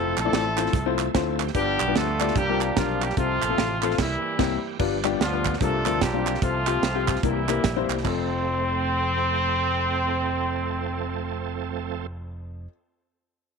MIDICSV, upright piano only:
0, 0, Header, 1, 2, 480
1, 0, Start_track
1, 0, Key_signature, -1, "major"
1, 0, Tempo, 406504
1, 1823, Time_signature, 4, 2, 24, 8
1, 16041, End_track
2, 0, Start_track
2, 0, Title_t, "Upright piano"
2, 0, Program_c, 0, 0
2, 0, Note_on_c, 0, 57, 72
2, 0, Note_on_c, 0, 60, 66
2, 0, Note_on_c, 0, 64, 64
2, 0, Note_on_c, 0, 65, 68
2, 0, Note_on_c, 0, 72, 85
2, 177, Note_off_c, 0, 64, 0
2, 178, Note_off_c, 0, 57, 0
2, 178, Note_off_c, 0, 60, 0
2, 178, Note_off_c, 0, 65, 0
2, 179, Note_off_c, 0, 72, 0
2, 296, Note_on_c, 0, 64, 71
2, 297, Note_on_c, 0, 57, 79
2, 297, Note_on_c, 0, 60, 76
2, 297, Note_on_c, 0, 74, 84
2, 298, Note_on_c, 0, 65, 70
2, 505, Note_off_c, 0, 64, 0
2, 506, Note_off_c, 0, 57, 0
2, 506, Note_off_c, 0, 60, 0
2, 506, Note_off_c, 0, 65, 0
2, 506, Note_off_c, 0, 74, 0
2, 677, Note_on_c, 0, 57, 82
2, 678, Note_on_c, 0, 65, 73
2, 679, Note_on_c, 0, 60, 73
2, 679, Note_on_c, 0, 72, 88
2, 680, Note_on_c, 0, 64, 75
2, 844, Note_off_c, 0, 57, 0
2, 844, Note_off_c, 0, 65, 0
2, 845, Note_off_c, 0, 60, 0
2, 845, Note_off_c, 0, 64, 0
2, 845, Note_off_c, 0, 72, 0
2, 1015, Note_on_c, 0, 57, 89
2, 1015, Note_on_c, 0, 64, 80
2, 1015, Note_on_c, 0, 72, 98
2, 1017, Note_on_c, 0, 65, 77
2, 1018, Note_on_c, 0, 60, 82
2, 1236, Note_off_c, 0, 57, 0
2, 1236, Note_off_c, 0, 64, 0
2, 1236, Note_off_c, 0, 65, 0
2, 1236, Note_off_c, 0, 72, 0
2, 1237, Note_off_c, 0, 60, 0
2, 1349, Note_on_c, 0, 60, 76
2, 1349, Note_on_c, 0, 65, 80
2, 1350, Note_on_c, 0, 57, 84
2, 1350, Note_on_c, 0, 64, 76
2, 1350, Note_on_c, 0, 72, 96
2, 1680, Note_off_c, 0, 60, 0
2, 1680, Note_off_c, 0, 64, 0
2, 1680, Note_off_c, 0, 65, 0
2, 1681, Note_off_c, 0, 57, 0
2, 1681, Note_off_c, 0, 72, 0
2, 1825, Note_on_c, 0, 65, 66
2, 1826, Note_on_c, 0, 43, 63
2, 1826, Note_on_c, 0, 55, 76
2, 1826, Note_on_c, 0, 59, 69
2, 1827, Note_on_c, 0, 62, 69
2, 1829, Note_on_c, 0, 71, 81
2, 2092, Note_off_c, 0, 55, 0
2, 2092, Note_off_c, 0, 59, 0
2, 2092, Note_off_c, 0, 65, 0
2, 2093, Note_off_c, 0, 62, 0
2, 2094, Note_off_c, 0, 71, 0
2, 2218, Note_on_c, 0, 55, 79
2, 2218, Note_on_c, 0, 59, 71
2, 2218, Note_on_c, 0, 62, 69
2, 2218, Note_on_c, 0, 65, 69
2, 2219, Note_on_c, 0, 71, 84
2, 2425, Note_off_c, 0, 55, 0
2, 2425, Note_off_c, 0, 59, 0
2, 2425, Note_off_c, 0, 62, 0
2, 2425, Note_off_c, 0, 65, 0
2, 2425, Note_off_c, 0, 71, 0
2, 2554, Note_off_c, 0, 43, 0
2, 2604, Note_on_c, 0, 62, 74
2, 2605, Note_on_c, 0, 55, 76
2, 2605, Note_on_c, 0, 65, 72
2, 2606, Note_on_c, 0, 59, 74
2, 2608, Note_on_c, 0, 74, 90
2, 2766, Note_off_c, 0, 55, 0
2, 2766, Note_off_c, 0, 62, 0
2, 2766, Note_off_c, 0, 65, 0
2, 2767, Note_off_c, 0, 59, 0
2, 2768, Note_off_c, 0, 74, 0
2, 2790, Note_on_c, 0, 48, 71
2, 2938, Note_on_c, 0, 60, 67
2, 2938, Note_on_c, 0, 70, 85
2, 2939, Note_on_c, 0, 55, 74
2, 2940, Note_on_c, 0, 65, 73
2, 2942, Note_on_c, 0, 62, 73
2, 3156, Note_off_c, 0, 60, 0
2, 3156, Note_off_c, 0, 70, 0
2, 3157, Note_off_c, 0, 55, 0
2, 3157, Note_off_c, 0, 65, 0
2, 3158, Note_off_c, 0, 62, 0
2, 3271, Note_on_c, 0, 55, 70
2, 3271, Note_on_c, 0, 62, 67
2, 3271, Note_on_c, 0, 65, 68
2, 3272, Note_on_c, 0, 60, 68
2, 3272, Note_on_c, 0, 70, 81
2, 3516, Note_off_c, 0, 48, 0
2, 3600, Note_off_c, 0, 55, 0
2, 3600, Note_off_c, 0, 62, 0
2, 3600, Note_off_c, 0, 65, 0
2, 3601, Note_off_c, 0, 60, 0
2, 3601, Note_off_c, 0, 70, 0
2, 3746, Note_on_c, 0, 60, 76
2, 3746, Note_on_c, 0, 69, 81
2, 3748, Note_on_c, 0, 48, 67
2, 3749, Note_on_c, 0, 65, 65
2, 4011, Note_off_c, 0, 60, 0
2, 4011, Note_off_c, 0, 69, 0
2, 4013, Note_off_c, 0, 65, 0
2, 4130, Note_on_c, 0, 60, 80
2, 4133, Note_on_c, 0, 65, 72
2, 4133, Note_on_c, 0, 69, 84
2, 4340, Note_off_c, 0, 60, 0
2, 4342, Note_off_c, 0, 65, 0
2, 4342, Note_off_c, 0, 69, 0
2, 4475, Note_off_c, 0, 48, 0
2, 4522, Note_on_c, 0, 60, 92
2, 4523, Note_on_c, 0, 65, 85
2, 4523, Note_on_c, 0, 69, 103
2, 4685, Note_off_c, 0, 60, 0
2, 4685, Note_off_c, 0, 65, 0
2, 4685, Note_off_c, 0, 69, 0
2, 5180, Note_on_c, 0, 55, 93
2, 5182, Note_on_c, 0, 58, 93
2, 5182, Note_on_c, 0, 60, 95
2, 5182, Note_on_c, 0, 64, 99
2, 5184, Note_on_c, 0, 67, 98
2, 5383, Note_off_c, 0, 55, 0
2, 5384, Note_off_c, 0, 58, 0
2, 5384, Note_off_c, 0, 60, 0
2, 5384, Note_off_c, 0, 64, 0
2, 5385, Note_off_c, 0, 67, 0
2, 5658, Note_on_c, 0, 62, 77
2, 5660, Note_on_c, 0, 43, 72
2, 5660, Note_on_c, 0, 65, 81
2, 5661, Note_on_c, 0, 55, 86
2, 5662, Note_on_c, 0, 71, 87
2, 5663, Note_on_c, 0, 59, 82
2, 5838, Note_off_c, 0, 62, 0
2, 5839, Note_off_c, 0, 65, 0
2, 5840, Note_off_c, 0, 55, 0
2, 5840, Note_off_c, 0, 71, 0
2, 5841, Note_off_c, 0, 59, 0
2, 5956, Note_on_c, 0, 55, 95
2, 5956, Note_on_c, 0, 59, 89
2, 5957, Note_on_c, 0, 62, 87
2, 5957, Note_on_c, 0, 67, 103
2, 5959, Note_on_c, 0, 65, 85
2, 6122, Note_off_c, 0, 55, 0
2, 6122, Note_off_c, 0, 59, 0
2, 6122, Note_off_c, 0, 62, 0
2, 6122, Note_off_c, 0, 67, 0
2, 6123, Note_off_c, 0, 65, 0
2, 6294, Note_on_c, 0, 59, 70
2, 6294, Note_on_c, 0, 62, 68
2, 6295, Note_on_c, 0, 65, 69
2, 6296, Note_on_c, 0, 55, 69
2, 6296, Note_on_c, 0, 71, 78
2, 6391, Note_off_c, 0, 43, 0
2, 6514, Note_off_c, 0, 59, 0
2, 6514, Note_off_c, 0, 62, 0
2, 6515, Note_off_c, 0, 55, 0
2, 6515, Note_off_c, 0, 65, 0
2, 6515, Note_off_c, 0, 71, 0
2, 6620, Note_on_c, 0, 70, 82
2, 6621, Note_on_c, 0, 55, 74
2, 6621, Note_on_c, 0, 60, 73
2, 6622, Note_on_c, 0, 65, 70
2, 6623, Note_on_c, 0, 62, 74
2, 6624, Note_on_c, 0, 48, 63
2, 6799, Note_off_c, 0, 70, 0
2, 6800, Note_off_c, 0, 55, 0
2, 6800, Note_off_c, 0, 60, 0
2, 6800, Note_off_c, 0, 65, 0
2, 6801, Note_off_c, 0, 62, 0
2, 6915, Note_on_c, 0, 60, 74
2, 6915, Note_on_c, 0, 62, 72
2, 6916, Note_on_c, 0, 55, 76
2, 6916, Note_on_c, 0, 65, 71
2, 6916, Note_on_c, 0, 70, 86
2, 7081, Note_off_c, 0, 60, 0
2, 7081, Note_off_c, 0, 62, 0
2, 7082, Note_off_c, 0, 55, 0
2, 7082, Note_off_c, 0, 65, 0
2, 7082, Note_off_c, 0, 70, 0
2, 7246, Note_on_c, 0, 55, 78
2, 7249, Note_on_c, 0, 65, 70
2, 7250, Note_on_c, 0, 60, 69
2, 7250, Note_on_c, 0, 62, 73
2, 7250, Note_on_c, 0, 67, 84
2, 7354, Note_off_c, 0, 48, 0
2, 7470, Note_off_c, 0, 55, 0
2, 7472, Note_off_c, 0, 60, 0
2, 7472, Note_off_c, 0, 62, 0
2, 7472, Note_off_c, 0, 65, 0
2, 7472, Note_off_c, 0, 67, 0
2, 7580, Note_on_c, 0, 48, 60
2, 7580, Note_on_c, 0, 65, 66
2, 7581, Note_on_c, 0, 60, 73
2, 7581, Note_on_c, 0, 69, 78
2, 7760, Note_off_c, 0, 60, 0
2, 7760, Note_off_c, 0, 65, 0
2, 7760, Note_off_c, 0, 69, 0
2, 7876, Note_on_c, 0, 60, 74
2, 7878, Note_on_c, 0, 67, 93
2, 7880, Note_on_c, 0, 65, 76
2, 8042, Note_off_c, 0, 60, 0
2, 8043, Note_off_c, 0, 67, 0
2, 8044, Note_off_c, 0, 65, 0
2, 8207, Note_on_c, 0, 65, 80
2, 8208, Note_on_c, 0, 60, 86
2, 8210, Note_on_c, 0, 67, 97
2, 8312, Note_off_c, 0, 48, 0
2, 8431, Note_off_c, 0, 60, 0
2, 8431, Note_off_c, 0, 65, 0
2, 8433, Note_off_c, 0, 67, 0
2, 8538, Note_on_c, 0, 58, 68
2, 8540, Note_on_c, 0, 48, 62
2, 8540, Note_on_c, 0, 60, 72
2, 8541, Note_on_c, 0, 55, 77
2, 8542, Note_on_c, 0, 64, 68
2, 8542, Note_on_c, 0, 70, 78
2, 8719, Note_off_c, 0, 58, 0
2, 8720, Note_off_c, 0, 60, 0
2, 8721, Note_off_c, 0, 55, 0
2, 8721, Note_off_c, 0, 64, 0
2, 8721, Note_off_c, 0, 70, 0
2, 8836, Note_on_c, 0, 55, 76
2, 8837, Note_on_c, 0, 58, 73
2, 8837, Note_on_c, 0, 60, 75
2, 8837, Note_on_c, 0, 70, 84
2, 8839, Note_on_c, 0, 64, 71
2, 9002, Note_off_c, 0, 55, 0
2, 9003, Note_off_c, 0, 58, 0
2, 9003, Note_off_c, 0, 60, 0
2, 9003, Note_off_c, 0, 70, 0
2, 9004, Note_off_c, 0, 64, 0
2, 9167, Note_on_c, 0, 58, 83
2, 9168, Note_on_c, 0, 55, 90
2, 9168, Note_on_c, 0, 60, 87
2, 9170, Note_on_c, 0, 64, 86
2, 9172, Note_on_c, 0, 72, 99
2, 9272, Note_off_c, 0, 48, 0
2, 9392, Note_off_c, 0, 55, 0
2, 9392, Note_off_c, 0, 58, 0
2, 9392, Note_off_c, 0, 60, 0
2, 9393, Note_off_c, 0, 64, 0
2, 9394, Note_off_c, 0, 72, 0
2, 9472, Note_on_c, 0, 53, 81
2, 9487, Note_on_c, 0, 57, 75
2, 9497, Note_on_c, 0, 41, 72
2, 9506, Note_on_c, 0, 60, 69
2, 9521, Note_on_c, 0, 69, 85
2, 14914, Note_off_c, 0, 53, 0
2, 14929, Note_off_c, 0, 57, 0
2, 14939, Note_off_c, 0, 41, 0
2, 14948, Note_off_c, 0, 60, 0
2, 14963, Note_off_c, 0, 69, 0
2, 16041, End_track
0, 0, End_of_file